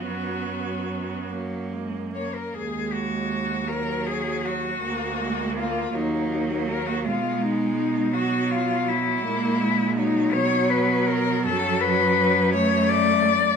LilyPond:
<<
  \new Staff \with { instrumentName = "Cello" } { \time 6/8 \key fis \major \tempo 4. = 54 fis'4. r4 cis''16 ais'16 | \key ees \minor aes'8 ges'4 bes'8 aes'8 ges'8~ | ges'4 f'8 ees'4 bes'16 ges'16 | f'8 dis'4 fis'8 f'8 fes'8~ |
fes'4 ees'8 des''8 b'8 bes'8 | \key fis \minor a'8 b'4 cis''8 d''4 | }
  \new Staff \with { instrumentName = "Cello" } { \clef bass \time 6/8 \key fis \major b4. ais4~ ais16 r16 | \key ees \minor aes4. ges4. | bes4. bes4. | aes4. fis4. |
aes4. fis4.~ | \key fis \minor fis4. a4. | }
  \new Staff \with { instrumentName = "Cello" } { \clef bass \time 6/8 \key fis \major fis4. fis8 gis8 ais8 | \key ees \minor r4. ges4. | bes8 aes8 bes8 ges4. | aes4. fis4. |
bes8 aes8 ges2 | \key fis \minor fis4. a4. | }
  \new Staff \with { instrumentName = "Cello" } { \clef bass \time 6/8 \key fis \major fis,2~ fis,8. r16 | \key ees \minor ees,2. | d,4. ees,4. | b,2. |
bes,4. b,4. | \key fis \minor fis,2. | }
>>